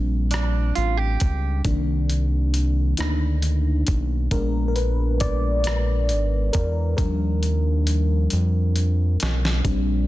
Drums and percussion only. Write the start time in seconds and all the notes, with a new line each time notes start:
0.31 cross-stick, closed hi-hat
0.75 closed hi-hat
1.20 kick, closed hi-hat
1.65 kick, closed hi-hat
2.09 closed hi-hat
2.54 closed hi-hat
2.97 cross-stick, closed hi-hat
3.42 closed hi-hat
3.87 kick, closed hi-hat
4.31 kick, closed hi-hat
4.76 closed hi-hat
5.20 kick, closed hi-hat
5.64 cross-stick, closed hi-hat
6.09 closed hi-hat
6.53 kick, closed hi-hat
6.98 kick, closed hi-hat
7.43 closed hi-hat
7.87 closed hi-hat
8.30 closed hi-hat
8.76 closed hi-hat
9.20 snare, closed hi-hat
9.45 snare
9.65 kick, closed hi-hat